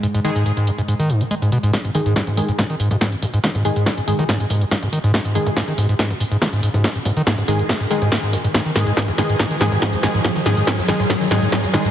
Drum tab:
HH |xxxxxxxxxxxxxxxx|xxoxxxoxxxoxxxox|xxoxxxoxxxoxxxox|xxoxxxoxxxoxxxox|
SH |----------------|----------------|----------------|----------------|
SD |----------------|o---o---o---o---|o---o---o---o---|o---o---o---o---|
T2 |----------------|--o--o--o--o--o-|-o--o--o--o--o--|o--o--o--o--o--o|
BD |----------------|o---o---o---o---|o---o---o---o---|o---o---o---o---|

HH |xxoxxxoxxxoxxxox|xxoxxxoxxxoxxxox|xxoxxxoxxxoxxxox|
SH |----------------|x-xxx-xxx-xxx-xx|x-xxx-xxx-xxx-xx|
SD |o---o---o---o---|o-o-o-o-o-o-o-o-|o-o-o-o-o-o-o-o-|
T2 |--o--o--o--o--o-|--o--o--o--o--o-|-o--o--o--o--o--|
BD |o-o-o---o---o---|o---o---o---o---|o---o---o---o---|